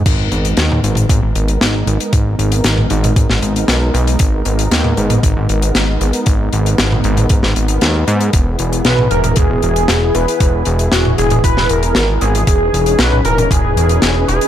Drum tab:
CC |x---------------|----------------|----------------|----------------|
HH |x-xxx-xxx-xxx-xx|x-xxx-xxx-xxx-xx|x-xxx-xxx-xxx-xx|x-xxx-xxx-xxx-xx|
SD |----o-------o---|----o----o--o---|----o-------o---|----o----o--o---|
T2 |-----o-o--------|-----o-o--------|-----o-o--------|-----o-o--------|
BD |o-------o-------|o-------o-------|o-------o-------|o-------o-------|

CC |----------------|----------------|----------------|
HH |x-xxx-xxx-xxx-xx|x-xxx-xxx-xxx-xx|x-xxx-xxx-xxx-xx|
SD |----o-------o---|----o----o--o---|----o-------o---|
T2 |-----o-o--------|-----o-o--------|-----o-o--------|
BD |o-------o-------|o-------o-------|o-------o-------|